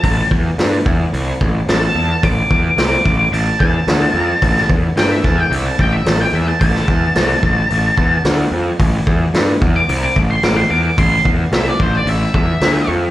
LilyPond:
<<
  \new Staff \with { instrumentName = "Lead electric guitar" } { \time 4/4 \key a \minor \tempo 4 = 110 a''8 r2 r8 a''4 | d'''4 d'''4 a''8 a''4.~ | a''8 r8 g''16 e''16 a''16 g''16 e''16 a''16 g''16 e''16 a''16 g''16 e''16 a''16 | a''2. r4 |
r4. r16 d'''16 r16 d'''16 r16 c'''16 d'''16 c'''16 d'''8 | c'''8 r8 e''16 d''16 c''16 d''16 e''8 e''4 r8 | }
  \new Staff \with { instrumentName = "Picked electric bass" } { \clef bass \time 4/4 \key a \minor a,,8 e,8 g,8 e,8 c,8 a,,8 a,,8 e,8 | a,,8 e,8 c,8 a,,8 a,,8 e,8 d,8 f,8 | a,,8 e,8 g,8 e,8 c,8 a,,8 a,,8 e,8 | a,,8 e,8 c,8 a,,8 a,,8 e,8 d,8 f,8 |
a,,8 e,8 g,8 e,8 c,8 a,,8 a,,8 e,8 | a,,8 e,8 c,8 a,,8 a,,8 e,8 d,8 f,8 | }
  \new DrumStaff \with { instrumentName = "Drums" } \drummode { \time 4/4 <hho bd>8 bd8 <hho sn>8 bd8 hho8 bd8 <hho sn>4 | <hho bd>8 bd8 <hho sn>8 bd8 hho8 bd8 <hho sn>4 | <hho bd>16 sn16 bd8 <hho sn>8 <bd sn>8 hho8 bd8 <hho sn>4 | <hho bd>16 sn16 bd8 <hho sn>8 bd8 hho8 bd8 <hho sn>4 |
<hho bd>8 bd8 <hho sn>8 bd8 hho8 bd8 <hho sn>4 | <hho bd>8 bd8 <hho sn>8 bd8 hho8 bd8 <hho sn>4 | }
>>